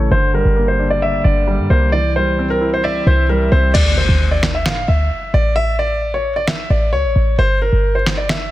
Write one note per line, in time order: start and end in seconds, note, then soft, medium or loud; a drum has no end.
0.00 0.10 A1 loud
0.00 0.12 C#3 medium
0.00 0.13 E3 medium
0.00 0.13 A3 medium
0.00 0.11 C#4 medium
0.00 0.11 C#5 loud
0.00 downlifter medium
0.11 0.44 G1 loud
0.11 1.23 D3 medium
0.11 0.30 C5 medium
0.34 1.46 G3 medium
0.34 0.66 A#4 medium
0.45 1.21 G1 loud
0.56 1.68 A#3 medium
0.68 0.87 C5 medium
0.79 1.93 D4 medium
0.90 1.00 D5 medium
1.02 1.93 D5 medium
1.02 1.21 E5 medium
1.24 1.60 G1 loud
1.24 1.93 D3 medium
1.24 1.67 D5 medium
1.47 1.93 G3 medium
1.59 1.70 G2 medium
1.70 3.02 C2 loud
1.70 1.93 A#3 medium
1.70 1.89 C5 medium
1.92 3.05 E3 medium
1.92 2.11 D5 medium
2.16 3.28 G3 medium
2.16 2.48 C5 medium
2.39 3.50 C4 medium
2.50 2.69 A#4 medium
2.61 3.75 E4 medium
2.74 2.83 C5 medium
2.84 3.03 D5 medium
2.84 3.75 E5 loud
3.06 3.50 C2 loud
3.06 3.75 E3 medium
3.06 3.26 C5 medium
3.29 3.75 G3 medium
3.29 3.48 A#4 medium
3.52 3.74 C2 loud
3.52 3.75 C4 medium
3.52 3.71 C5 medium
3.74 4.07 D2 loud
3.74 3.93 D5 loud
3.74 crash loud
3.74 impact medium
3.97 4.29 C5 medium
4.09 4.67 D2 loud
4.31 4.50 D5 medium
4.43 snare medium
4.43 clap medium
4.54 4.64 E5 medium
4.65 4.87 A2 medium
4.65 snare loud
4.65 clap medium
4.88 5.10 D2 loud
4.88 5.31 E5 medium
5.34 6.66 A1 loud
5.34 5.53 D5 medium
5.56 5.75 E5 loud
5.79 6.11 D5 medium
6.14 6.33 C#5 medium
6.36 6.46 D5 medium
6.47 6.66 E5 medium
6.47 snare loud
6.47 clap medium
6.70 6.94 A1 loud
6.70 6.89 D5 medium
6.93 7.06 C#2 loud
6.93 7.35 C#5 medium
7.04 7.15 A1 loud
7.16 7.37 A1 loud
7.38 7.71 G1 loud
7.38 7.57 C5 medium
7.62 7.93 A#4 medium
7.72 8.49 G1 loud
7.95 8.14 C5 medium
8.06 snare medium
8.06 clap medium
8.17 8.27 D5 medium
8.29 8.48 E5 medium
8.29 snare loud
8.29 clap medium